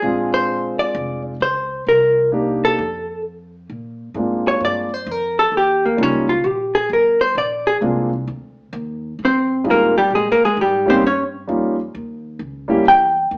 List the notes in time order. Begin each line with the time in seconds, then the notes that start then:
Already playing: G#4
0.02 A#1 G#3 C4 D4 F4
0.34 C5
0.79 D5, muted upright bass stroke
0.95 F1
1.40 C#2 C5
1.86 C2 A#4
2.32 A#3 D4 D#4 G4
2.65 A4
2.78 F2
3.70 A#2
4.14 G#2 G#3 A#3 C4 D4 F4
4.48 C#5
4.60 G2
4.65 D5
4.94 C5
5.07 F2
5.11 A#4
5.39 A4
5.52 D#2
5.57 G4
5.86 A#3
5.97 C#2 G3 A#3 C#4 D#4 F4
6.03 C#4
6.29 F4
6.44 A#1 G4
6.75 G#4
6.90 G1 A#4
7.21 C5
7.35 A#1 D5
7.67 G#4
7.81 C2 G#3 A#3 C4 D4 F4
8.27 D2
8.73 D#2
9.19 F2
9.25 C4 C5
9.64 A2 G3 G#3 C4 D#4 F4
9.70 A#3 A#4
9.98 G3 G4
10.10 A#2
10.15 G#3 G#4
10.32 A#3 A#4
10.40 muted upright bass stroke
10.45 G#3 G#4
10.57 G#2
10.61 G3 G4
10.86 G3 A#3 C4 C#4 D#4 G4
10.90 C5
11.01 G2
11.06 C#4 C#5
11.47 F2 G3 A#3 C#4 D#4 F4
11.95 D#2
12.39 C#2
12.68 G3 A#3 C#4 E4 G4
12.85 E2 G5
13.31 D#2